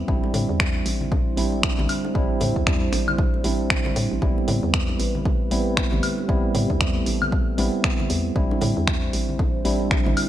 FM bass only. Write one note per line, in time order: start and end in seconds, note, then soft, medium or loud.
0.08 0.21 A1 loud
0.34 0.46 A2 loud
0.49 0.82 E2 loud
0.86 1.34 A1 medium
1.37 1.74 A1 medium
1.79 1.87 A1 medium
2.15 2.27 A1 loud
2.41 2.53 A2 loud
2.56 2.89 E2 loud
2.93 3.41 A1 medium
3.44 3.87 A1 loud
3.86 3.94 E1 loud
3.96 4.08 A2 medium
4.11 4.20 A1 medium
4.22 4.34 A1 loud
4.48 4.60 A2 loud
4.63 4.96 E2 loud
5.00 5.48 A1 medium
5.51 5.88 A1 medium
5.92 6.01 A1 medium
6.29 6.41 A1 loud
6.55 6.67 A2 loud
6.70 7.03 E2 loud
7.06 7.55 A1 medium
7.58 7.70 A1 loud
8.10 8.32 E2 medium
8.36 8.48 A1 loud
8.62 8.74 A2 loud
8.77 9.10 E2 medium
9.13 9.62 A1 medium
9.65 10.01 A1 medium
10.06 10.15 A1 medium